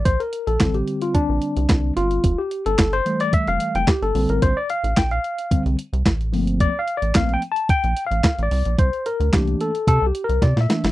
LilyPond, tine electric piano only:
<<
  \new Staff \with { instrumentName = "Tine electric piano" } { \time 4/4 \key bes \lydian \tempo 4 = 110 c''16 bes'8 a'8 g'8 f'16 d'4. f'8~ | f'16 g'8 a'8 c''8 d''16 e''16 f''8 g''16 g'16 a'8 bes'16 | c''16 d''16 f''8 g''16 f''4 r4. r16 | \tuplet 3/2 { d''8 f''8 d''8 f''8 g''8 a''8 g''4 f''8~ f''8 d''4 } |
c''8 bes'8 g'8 a'8 \tuplet 3/2 { a'8 g'8 bes'8 d''8 e''4 } | }
  \new Staff \with { instrumentName = "Tine electric piano" } { \time 4/4 \key bes \lydian r4 <d g c'>2. | r4. <e g a>4. r8 <d g c'>8 | r2 <d g c'>8 r4 <f a bes c'>8 | r4 <f a bes c'>8 r2 r8 |
r4 <e a bes d'>8 r2 <e a bes d'>8 | }
>>